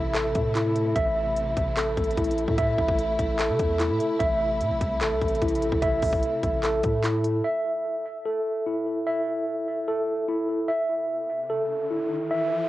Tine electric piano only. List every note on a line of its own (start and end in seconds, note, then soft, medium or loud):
0.00 0.54 E4 medium
0.00 0.13 A4 loud
0.00 0.95 E5 loud
0.14 0.96 A4 loud
0.55 0.96 E4 medium
0.96 2.57 E5 loud
1.77 3.38 A4 loud
2.18 3.79 E4 medium
2.58 4.18 E5 loud
3.39 4.20 A4 loud
3.80 4.20 E4 medium
4.20 5.81 E5 loud
5.01 6.62 A4 loud
5.42 7.03 E4 medium
5.82 7.43 E5 loud
6.63 7.44 A4 loud
7.04 7.44 E4 medium
7.44 9.05 E5 loud
8.26 9.87 A4 medium
8.66 10.27 E4 medium
9.07 10.67 E5 loud
9.88 10.69 A4 medium
10.28 10.69 E4 medium
10.68 12.30 E5 loud
11.50 12.69 A4 medium
11.91 12.69 E4 medium
12.31 12.69 E5 loud